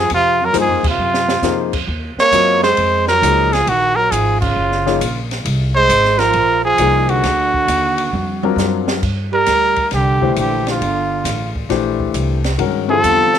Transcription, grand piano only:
0.53 0.81 F3 medium
0.53 0.81 A#3 medium
0.53 0.81 D#4 medium
0.53 0.81 G#4 medium
0.53 0.82 C5 medium
1.43 1.70 F3 medium
1.43 1.71 A#3 medium
1.43 1.71 D#4 medium
1.43 1.71 G#4 medium
1.43 1.71 C5 medium
2.33 2.60 F#3 medium
2.33 2.60 C4 medium
2.33 2.60 F4 medium
2.33 2.61 A#4 medium
2.33 2.61 D#5 medium
3.22 3.50 F3 medium
3.22 3.50 A#3 medium
3.22 3.50 D#4 medium
3.22 3.50 G#4 medium
3.22 3.50 D#5 medium
4.86 5.00 F3 medium
4.86 4.99 A#3 medium
4.86 5.00 D#4 medium
4.86 5.00 G#4 medium
4.86 5.00 C#5 medium
6.79 7.24 F3 medium
6.79 7.24 A#3 medium
6.79 7.24 D#4 medium
6.79 7.24 G#4 medium
6.79 7.24 C5 medium
8.43 8.99 F#3 medium
8.43 9.00 C4 medium
8.43 9.00 D4 medium
8.43 9.00 F4 medium
8.43 9.00 A#4 medium
10.22 10.78 E3 medium
10.22 10.78 A3 medium
10.22 10.78 D4 medium
10.22 10.78 G4 medium
10.22 10.78 C5 medium
11.70 12.39 E3 medium
11.70 12.39 A3 medium
11.70 12.39 D4 medium
11.70 12.39 G4 medium
11.70 12.39 C5 medium
12.58 12.86 D#3 medium
12.58 12.86 G#3 medium
12.58 12.86 C#4 medium
12.58 12.86 F#4 medium
12.58 12.87 A#4 medium
12.88 13.28 D3 medium
12.88 13.28 G3 medium
12.88 13.28 C4 medium
12.88 13.28 F4 medium
12.88 13.29 A4 medium

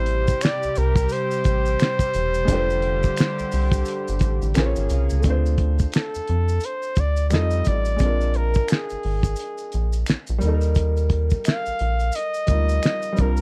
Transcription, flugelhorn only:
0.00 0.45 C5 loud
0.43 0.79 D5 loud
0.78 1.14 A#4 loud
1.12 4.56 C5 loud
5.95 6.67 A4 medium
6.65 7.02 C5 medium
7.00 7.29 D5 medium
7.29 7.35 D5 medium
7.33 7.69 D#5 loud
7.68 8.38 D5 medium
8.36 8.73 A#4 medium
8.71 10.08 G#4 medium
11.46 12.17 F5 loud
12.15 13.22 D#5 loud
13.21 13.41 A#4 medium

